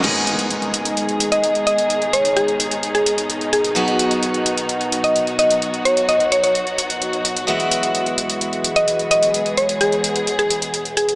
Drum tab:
CC |x---------------|----------------|----------------|----------------|
HH |xxxxxxxxxxxxxxxx|xxxxxxxxxxxxxxxx|xxxxxxxxxxxxxxxx|xxxxxxxxxxxxxxxx|

CC |----------------|----------------|
HH |xxxxxxxxxxxxxxxx|xxxxxxxxxxxxxxxx|